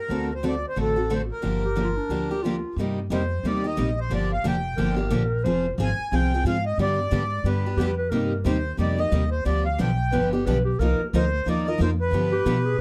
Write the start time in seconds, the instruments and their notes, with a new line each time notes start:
Already playing: accordion A#4
0.10 upright bass D2, steel-string acoustic guitar D3 A3 C4 F#4 A4
0.35 accordion C5
0.43 steel-string acoustic guitar D3 A3 C4 F#4 A4
0.47 accordion D5
0.69 accordion C5
0.76 upright bass A1, steel-string acoustic guitar D3 A3 C4 F#4 A4
0.80 accordion A4
0.96 steel-string acoustic guitar C4 F#4 A4
1.10 steel-string acoustic guitar D3 A3 C4 F#4 A4
1.14 accordion C5
1.32 accordion A#4
1.42 upright bass G1, steel-string acoustic guitar D3 F3 A#3 D4 G4
1.63 clarinet G4
1.76 steel-string acoustic guitar D3 F3 A#3 D4 G4
1.84 clarinet F4
1.97 clarinet D4
2.09 upright bass D2, steel-string acoustic guitar D3 F3 A#3 D4 G4
2.30 steel-string acoustic guitar A#3 D4 G4, clarinet G4
2.43 steel-string acoustic guitar D3 F3 A#3 D4 G4, clarinet F4
2.76 upright bass G2, steel-string acoustic guitar C3 G3 A#3 D#4 G4
3.10 upright bass F2, steel-string acoustic guitar C3 G3 A#3 D#4 G4, accordion C5
3.43 upright bass D#2, steel-string acoustic guitar C3 G3 A#3 D#4 G4, accordion D5
3.64 steel-string acoustic guitar A#3 D#4 G4, accordion D#5
3.77 upright bass A#1, steel-string acoustic guitar C3 G3 A#3 D#4 G4
4.00 accordion C5
4.10 upright bass G1, steel-string acoustic guitar D3 F3 A#3 D4 G4
4.14 accordion D5
4.33 accordion F5
4.44 upright bass F1, steel-string acoustic guitar D3 F3 A#3 D4 G4, accordion G5
4.77 upright bass G1, steel-string acoustic guitar D3 F3 A#3 D4 G4, clarinet A#4
4.96 steel-string acoustic guitar A#3 D4 G4
5.10 upright bass A#1, steel-string acoustic guitar D3 F3 A#3 D4 G4
5.44 upright bass F1, steel-string acoustic guitar F3 C4 F4 G#4, clarinet C5
5.78 upright bass G#1, steel-string acoustic guitar F3 C4 F4 G#4
5.82 accordion G#5
6.12 upright bass C2, steel-string acoustic guitar F3 C4 F4 G#4, accordion G5
6.34 steel-string acoustic guitar C4 F4 G#4
6.44 upright bass G#2, steel-string acoustic guitar F3 C4 F4 G#4, accordion F5
6.66 accordion D#5
6.78 upright bass G2, steel-string acoustic guitar D3 G3 B3 D4 G4, accordion D5
7.11 upright bass G#2, steel-string acoustic guitar D3 G3 B3 D4 G4
7.44 upright bass G2, steel-string acoustic guitar D3 G3 B3 D4 G4, accordion B4
7.66 steel-string acoustic guitar B3 D4 G4
7.77 upright bass F2, steel-string acoustic guitar D3, clarinet G4
7.81 steel-string acoustic guitar G3 B3 D4 G4
7.98 clarinet B4
8.10 upright bass G2, steel-string acoustic guitar C3 G3 A#3 D#4 G4, clarinet A#4
8.45 upright bass D#2, steel-string acoustic guitar C3 G3 A#3 D#4 G4, accordion C5
8.78 upright bass F2, steel-string acoustic guitar C3 G3 A#3 D#4 G4, accordion D5
8.98 steel-string acoustic guitar A#3 D#4 G4, accordion D#5
9.12 upright bass D#2, steel-string acoustic guitar C3 G3 A#3 D#4 G4
9.31 accordion C5
9.45 upright bass D2, steel-string acoustic guitar D3 F3 B3 D4 G4, accordion D5
9.65 accordion F5
9.78 upright bass B1, steel-string acoustic guitar D3 F3 B3 D4 G4, accordion G5
10.12 upright bass G1, steel-string acoustic guitar D3 F3 B3 D4 G4, clarinet B4
10.33 steel-string acoustic guitar B3 D4 G4, clarinet G4
10.46 upright bass B1, steel-string acoustic guitar D3 F3 B3 D4 G4, clarinet B4
10.65 clarinet G4
10.79 upright bass C2, steel-string acoustic guitar F3 A#3 D#4 F4 A#4, clarinet A#4
11.13 upright bass D2, steel-string acoustic guitar F3 A#3 D#4 F4 A#4, accordion C5
11.46 upright bass D#2, steel-string acoustic guitar F3 A#3 D#4 F4 A#4, accordion D5
11.68 steel-string acoustic guitar D#4 F4 A#4, accordion D#5
11.80 upright bass F2, steel-string acoustic guitar F3 A#3 D#4 F4 A#4, accordion C5
12.01 accordion B4
12.12 upright bass G2, steel-string acoustic guitar D3 F3 B3 D4 G4
12.32 clarinet G4
12.46 upright bass B2, steel-string acoustic guitar D3 F3 B3 D4 G4
12.65 clarinet G#4